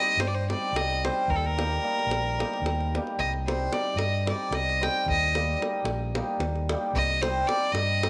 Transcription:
Already playing: hammered dulcimer G3 C4 D#4 G4, fiddle D#5
0.17 fingered electric bass G2, fiddle C5, davul high
0.28 fiddle D5
0.35 fiddle C5
0.49 hammered dulcimer G3 C4 D#4 G4, fiddle D5, davul high
0.73 fingered electric bass C2, fiddle D#5, davul high
0.90 davul high
1.05 hammered dulcimer G3 C4 D#4 G4, fiddle C5, davul high
1.28 fingered electric bass D#2, fiddle A#4, davul low
1.36 fiddle A4
1.44 fiddle A#4, davul high
1.56 hammered dulcimer G3 A#3 D#4 G4, davul high
1.73 davul high
1.82 hammered dulcimer G3 A#3 D#4 G4
1.99 davul high
2.07 fingered electric bass A#1
2.11 davul high
2.38 hammered dulcimer G3 A#3 D#4 G4, davul high
2.54 davul high
2.62 fingered electric bass D#2
2.66 davul high
2.80 davul high
2.95 hammered dulcimer G3 A#3 D#4 G4, davul high
3.07 davul high
3.19 fingered electric bass C2, fiddle D#5, davul low
3.34 davul high
3.47 hammered dulcimer G3 C4 D#4 G4, fiddle C5, davul high
3.72 hammered dulcimer G3 C4 D#4 G4, fiddle D5, davul high
3.96 fingered electric bass G2, fiddle D#5, davul high
4.25 hammered dulcimer G3 C4 D#4 G4, fiddle D5, davul high
4.51 fingered electric bass C2, fiddle D#5, davul high
4.69 davul high
4.81 hammered dulcimer G3 C4 D#4 G4, fiddle G5, davul high
5.06 fingered electric bass D#2, fiddle D#5, davul low
5.23 davul high
5.35 hammered dulcimer G3 A#3 D#4 G4, davul high
5.60 hammered dulcimer G3 A#3 D#4 G4, davul high
5.84 fingered electric bass A#1, davul high
6.15 hammered dulcimer G3 A#3 D#4 G4, davul high
6.39 fingered electric bass D#2, davul high
6.56 davul high
6.69 hammered dulcimer G3 A#3 D#4 G4, davul high
6.93 fingered electric bass C2, fiddle D#5, davul low
7.10 davul high
7.22 hammered dulcimer G3 C4 D#4 G4, fiddle C5, davul high
7.48 hammered dulcimer G3 C4 D#4 G4, fiddle D5, davul high
7.73 fingered electric bass G2, fiddle D#5, davul high
8.03 hammered dulcimer G3 C4 D#4 G4, davul high

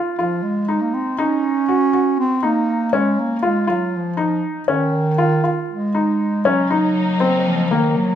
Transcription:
Already playing: felt piano F4
0.17 bass clarinet F3, felt piano F4
0.43 bass clarinet G#3
0.68 felt piano D#4
0.81 bass clarinet A#3
0.94 bass clarinet C4
1.18 bass clarinet C#4, felt piano D#4
1.69 felt piano F#4
1.93 felt piano F#4
2.20 bass clarinet C4
2.43 bass clarinet A#3, felt piano D#4
2.93 bass clarinet G#3, felt piano C#4
3.19 bass clarinet A#3
3.43 bass clarinet G#3, felt piano F4
3.67 bass clarinet F#3, felt piano F4
3.96 bass clarinet F3
4.17 felt piano D#4
4.68 bass clarinet D#3, felt piano C#4
5.18 felt piano F4
5.44 felt piano F4
5.70 bass clarinet G#3
5.95 felt piano D#4
6.45 string section C#3 F#3 A#3 D#4, bass clarinet F#3, felt piano C#4
6.71 felt piano D#4
7.20 felt piano C4
7.47 bass clarinet F3
7.71 bass clarinet D#3, felt piano A#3
7.97 bass clarinet F#3

